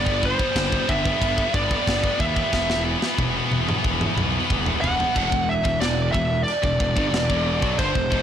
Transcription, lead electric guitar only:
0.00 0.25 D5 loud
0.25 0.91 C5 loud
0.89 1.54 E5 loud
1.55 2.20 D5 loud
2.20 2.82 E5 loud
4.81 5.49 F#5 loud
5.49 5.79 E5 loud
5.81 6.11 D5 medium
6.12 6.43 E5 medium
6.43 7.81 D5 medium
7.79 8.22 C5 medium

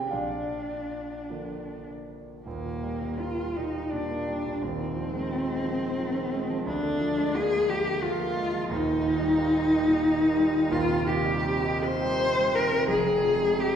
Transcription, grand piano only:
0.00 0.14 G#1 soft
0.00 0.14 C3 soft
0.00 0.13 F3 soft
0.00 0.14 C4 soft
0.00 0.14 G4 soft
0.00 0.14 G#4 soft
0.00 0.11 F5 soft
0.00 0.14 G5 medium
0.00 0.14 G#5 medium
0.11 1.26 A#1 soft
0.11 2.04 F4 soft
0.11 2.04 D5 soft
0.11 2.07 F5 medium
1.30 2.42 D3 soft
1.30 2.42 F3 soft
1.30 2.42 A#3 soft
2.46 4.58 D#1 soft
2.46 4.58 D#2 soft
2.64 2.94 A#2 soft
2.83 3.13 G3 soft
3.02 3.31 A#2 soft
3.21 3.49 A#3 soft
3.39 3.67 G3 soft
3.57 3.85 A#2 soft
3.75 4.03 G3 soft
3.92 4.20 A#2 soft
4.11 4.38 A#3 soft
4.27 4.55 G3 soft
4.46 4.62 A#2 soft
4.61 6.63 D#1 medium
4.61 6.63 D#2 medium
4.79 5.07 D#3 soft
4.96 5.24 F3 soft
5.14 5.41 G#3 soft
5.30 5.58 C4 soft
5.48 5.75 G#3 soft
5.65 5.92 F3 soft
5.82 6.09 D#3 soft
6.00 6.26 F3 soft
6.15 6.43 C4 soft
6.33 6.60 G#3 soft
6.50 6.67 F3 medium
6.66 8.66 D2 medium
6.83 7.11 D3 soft
7.01 7.28 F3 soft
7.18 7.46 G#3 soft
7.35 7.63 A#3 medium
7.52 7.79 G#3 soft
7.69 7.96 F3 soft
7.86 8.13 D3 soft
8.02 8.29 F3 soft
8.19 8.46 A#3 soft
8.36 8.63 G#3 medium
8.54 8.70 F3 soft
8.69 10.67 D#1 medium
8.69 10.67 D#2 medium
8.87 9.14 A#2 soft
9.04 9.31 D#3 medium
9.20 9.47 G3 medium
9.37 9.64 A#3 medium
9.54 9.81 G3 medium
9.71 9.98 D#3 soft
9.87 10.14 A#2 soft
10.04 10.31 D#3 soft
10.21 10.47 A#3 soft
10.37 10.64 G3 medium
10.54 10.72 D#3 medium
10.70 12.85 D#1 medium
10.70 12.85 D#2 medium
10.89 11.19 C3 soft
11.07 11.38 D#3 medium
11.26 11.57 G3 soft
11.46 11.76 C4 medium
11.65 11.95 D#4 medium
11.84 12.13 C4 medium
12.02 12.30 G3 soft
12.20 12.48 C4 medium
12.37 12.65 G3 medium
12.54 12.83 D#3 medium
12.72 12.90 C3 medium
12.88 13.76 F1 medium
12.88 13.76 F2 medium
13.07 13.35 C3 medium
13.24 13.52 F3 soft
13.41 13.70 G#3 soft
13.58 13.76 C4 soft

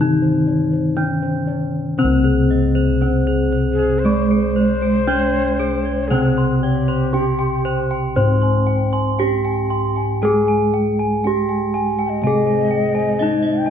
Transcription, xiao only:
3.72 4.00 G#4 medium
3.99 4.35 C5 medium
4.36 6.03 C5 loud
6.03 6.09 C5 medium
6.08 6.51 G#4 medium
6.51 6.61 G#4 medium
6.59 8.43 G4 medium
12.06 13.60 D#5 loud
12.06 12.10 G5 medium
13.58 13.70 G5 medium

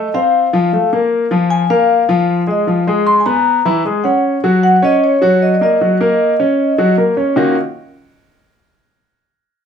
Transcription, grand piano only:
0.14 0.46 C4 medium
0.14 0.46 C5 medium
0.53 0.69 F3 medium
0.53 0.69 F4 medium
0.73 0.89 A3 medium
0.73 0.89 A4 medium
0.93 1.24 A#3 medium
0.93 1.25 A#4 medium
1.31 1.63 F3 medium
1.31 1.63 F4 medium
1.70 2.02 A#3 medium
1.70 2.02 A#4 medium
2.09 2.41 F3 medium
2.09 2.41 F4 medium
2.47 2.64 G#3 medium
2.47 2.64 G#4 medium
2.67 2.83 F3 medium
2.67 2.84 F4 medium
2.87 3.19 G#3 medium
2.87 3.19 G#4 medium
3.26 3.58 B3 medium
3.26 3.58 B4 medium
3.65 3.81 E3 medium
3.65 3.81 E4 medium
3.85 4.01 G#3 medium
3.85 4.01 G#4 medium
4.04 4.36 C#4 medium
4.04 4.37 C#5 medium
4.44 4.76 F#3 medium
4.44 4.76 F#4 medium
4.82 5.15 C#4 medium
4.82 5.14 C#5 medium
5.22 5.54 F#3 medium
5.22 5.54 F#4 medium
5.61 5.77 A#3 medium
5.61 5.77 A#4 medium
5.81 5.97 F#3 medium
5.81 5.97 F#4 medium
6.01 6.32 A#3 medium
6.01 6.32 A#4 medium
6.40 6.71 C#4 medium
6.40 6.71 C#5 medium
6.78 6.94 F#3 medium
6.78 6.94 F#4 medium
6.98 7.14 A#3 medium
6.98 7.14 A#4 medium
7.17 7.33 C#4 medium
7.17 7.33 C#5 medium
7.36 7.54 D#3 medium
7.36 7.54 A#3 medium
7.36 7.55 C#4 medium
7.36 7.55 D#4 medium
7.36 7.55 F4 medium
7.36 7.55 F#4 medium

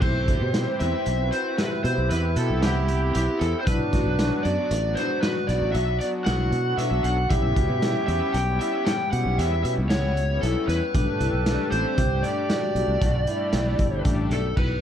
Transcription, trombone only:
0.02 1.60 C4 loud
1.58 3.68 E4 loud
3.67 5.48 D4 loud
5.74 7.32 F#4 loud
7.31 10.67 G4 loud
10.94 11.99 A4 loud
11.97 13.03 G4 loud
13.02 13.27 F#4 medium
13.27 14.07 E4 medium
14.05 14.57 D4 medium

